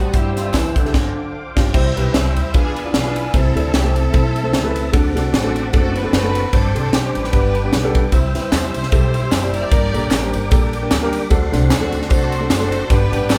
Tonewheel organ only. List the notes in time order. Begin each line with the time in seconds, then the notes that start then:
Already playing: C5 F#5 A5 D#6
0.14 C5 E5 G5 E6
0.94 D6
1.74 C5 E5 G5 E6
2.54 D5 F5 G#5
3.33 C4 E5 A5
4.94 F#5 A5 D6
6.53 C5 D5 G5 D6
7.34 B4
8.13 C5 E5 E6
9.72 A#4 D5 D6
11.31 A4 F#5 C6
12.90 B4 G5 D6